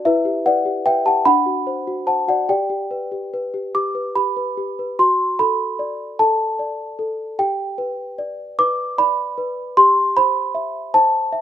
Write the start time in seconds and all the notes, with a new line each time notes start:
0.05 E4 B4 E5
0.25 G4
0.46 B4 D5 F#5
0.65 G4
0.86 B4 E5 G5
1.05 G4 F#5 A5
1.25 D4 F#5 B5
1.46 F#4
1.67 C5
1.87 F#4
2.07 C5 F#5 A5
2.28 F#4 D5 F#5
2.49 G4 D5 G5
2.70 G4
2.91 B4
3.12 G4
3.34 B4
3.54 G4
3.75 G4 D6
3.95 B4
4.16 G4 B5
4.37 B4
4.57 G4
4.79 B4
4.99 F#4 C6
5.39 A4 B5
5.79 D5
6.19 A4 A5
6.59 D5
6.99 A4
7.39 G4 G5
7.78 B4
8.18 D5
8.59 B4 D6
8.98 D5 B5
9.38 B4
9.77 G4 C6
10.17 C5 B5
10.55 E5
10.94 C5 A5
11.33 E5